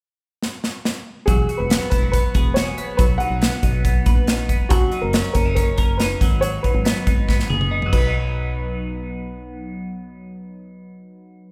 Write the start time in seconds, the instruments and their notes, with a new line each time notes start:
0.43 snare
0.64 snare
0.85 snare
1.26 fingered electric bass E1, clean electric guitar F#3, upright piano G#4, kick, closed hi-hat
1.49 clean electric guitar F#4, closed hi-hat
1.57 fingered electric bass E1, upright piano B4
1.70 clean electric guitar B3, snare, closed hi-hat
1.90 fingered electric bass E1, clean electric guitar E4, upright piano B4, kick, closed hi-hat
2.03 clean electric guitar F#4
2.12 clean electric guitar B3, upright piano B4, kick, closed hi-hat
2.35 fingered electric bass E1, clean electric guitar G#4, kick, closed hi-hat
2.54 clean electric guitar F#4, upright piano C#5, snare, closed hi-hat
2.78 clean electric guitar B3, closed hi-hat
2.97 fingered electric bass B1, clean electric guitar F#3, upright piano B4, kick, closed hi-hat
3.18 clean electric guitar D#4, upright piano F#5, closed hi-hat
3.30 fingered electric bass B1
3.42 clean electric guitar B3, snare, closed hi-hat
3.63 fingered electric bass B1, clean electric guitar D#4, kick, closed hi-hat
3.85 clean electric guitar B3, kick, closed hi-hat
4.06 fingered electric bass A#1, clean electric guitar B4, kick, closed hi-hat
4.27 clean electric guitar D#4, snare, closed hi-hat
4.49 fingered electric bass E1, clean electric guitar B3, kick, closed hi-hat
4.69 fingered electric bass F#1, clean electric guitar F#3, upright piano F#4, kick, closed hi-hat
4.92 clean electric guitar D#4, closed hi-hat
5.02 fingered electric bass F#1, upright piano A#4
5.13 clean electric guitar C#4, snare, closed hi-hat
5.33 fingered electric bass F#1, clean electric guitar C#4, upright piano A#4, kick, closed hi-hat
5.46 clean electric guitar D#4
5.55 clean electric guitar C#4, upright piano A#4, kick, closed hi-hat
5.78 fingered electric bass F#1, clean electric guitar A#4, kick, closed hi-hat
5.98 clean electric guitar D#4, upright piano B4, snare, closed hi-hat
6.21 fingered electric bass G#1, clean electric guitar F#3, kick, closed hi-hat
6.41 clean electric guitar F#3, upright piano C#5, closed hi-hat
6.63 clean electric guitar D#4, upright piano B4, kick, closed hi-hat
6.74 fingered electric bass G#1
6.85 clean electric guitar B3, snare, closed hi-hat
7.07 fingered electric bass G#1, clean electric guitar D#4, kick, closed hi-hat
7.28 clean electric guitar B3, kick, snare
7.40 snare
7.50 fingered electric bass F#1, clean electric guitar G#4, high tom
7.61 high tom
7.71 clean electric guitar D#4
7.82 clean electric guitar F#3, mid tom
7.93 fingered electric bass B1, upright piano B4, kick, crash
7.98 clean electric guitar B3
8.07 clean electric guitar D#4